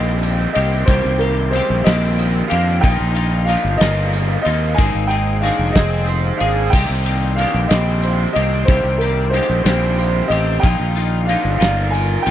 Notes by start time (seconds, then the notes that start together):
Already playing: A#1 C3 D#3 G3 A#3 C4 G4 D#5
0.23 D#4, ride, tambourine
0.53 C2 A#3 C4 G4 D#5, ride, tambourine
0.58 A#3
0.85 C2 C3 D#3 G3 A#3 C5, kick, ride, tambourine
0.90 C4 G4
1.05 C2
1.17 G3 A#4, ride
1.21 A#3 C4 G4, tambourine
1.50 D#3 G3 G#3 C5, ride, tambourine
1.54 A#3 C4 G4
1.70 A#1
1.83 A#1 A#3 C4 G4 D#5, snare, ride, tambourine
1.87 D#3 A#3
2.18 D#4, ride, tambourine
2.48 F2 A#3 C4 D4 G4 F5, ride, tambourine
2.53 A#3
2.79 A#2 D#3 D#4 G5
2.83 A#1 A#3 D#4 F4, kick, ride, tambourine
3.01 A#1
3.15 A#3 D#4 F4, ride, tambourine
3.44 D#3 D4 F5
3.48 F3 A#3 D#4 F4, ride, tambourine
3.65 G1
3.77 G1 A#3 F4 D#5, ride
3.81 D#3 A#3 D#4, snare, tambourine
4.13 D#4, ride, tambourine
4.42 C4 F4 D#5
4.46 D#2 A#3 D#4, ride, tambourine
4.74 D#3 D#4 G#5
4.78 G#1 G#3 A#3 C4 G#4, kick, ride, tambourine
4.95 G#1, tambourine
5.07 D#4 G#4 G5, ride
5.12 A#3 C4
5.40 D#3 A#3 D4 D#4 F5, ride, tambourine
5.45 C4 G#4
5.59 F1, tambourine
5.73 F1 C4 G#4 D#5, kick, snare, ride, tambourine
5.77 D#3 A#3 C4
6.07 C5, ride, tambourine
6.24 tambourine
6.37 G#1 D4 G#4 F5, ride, tambourine
6.43 A#3 C4
6.70 C2 C3 D#3 D#4 G5, kick, crash, tambourine
6.74 A#3 C4 G4
6.90 C2
7.06 A#3 C4 G4, ride, tambourine
7.35 D#3 D4 D#4 F5, ride, tambourine
7.39 A#3 C4 G4
7.54 A#1
7.67 A#1 C4 G4 D#5, ride, tambourine
7.71 D#3 A#3 C4, snare
8.02 C5, ride, tambourine
8.32 C4 G4 D#5
8.36 C2 A#3 C4, ride, tambourine
8.65 C2 C3 D#3 G3 A#3 C5, kick, ride, tambourine
8.69 C4 G4
8.84 C2
8.98 G3 G4 A#4, ride, tambourine
9.02 A#3 C4
9.30 D#3 G#3 D#4 C5, ride, tambourine
9.34 A#3 C4 G4
9.50 A#1
9.63 A#1 G3 C4 G4 C5, snare, ride, tambourine
9.68 D#3 A#3
9.98 C5, ride, tambourine
10.28 A1 C4 G4 D#5, ride, tambourine
10.32 A#3 C4
10.60 A#1 A#2 D#3 D#4 G5, kick
10.64 A#3 D#4 F4, ride, tambourine
10.80 A#1
10.96 A#3 D#4 F4, ride, tambourine
11.24 D#3 D4 F5
11.29 A#3 D#4 F4, ride, tambourine
11.45 G1
11.58 G1 A#3 D#4 F4 F5, tambourine
11.62 D#3 A#3, snare, ride
11.90 F4 A#4 G#5, tambourine
11.95 ride
12.22 D#4 F4 G5
12.27 A#1, ride, tambourine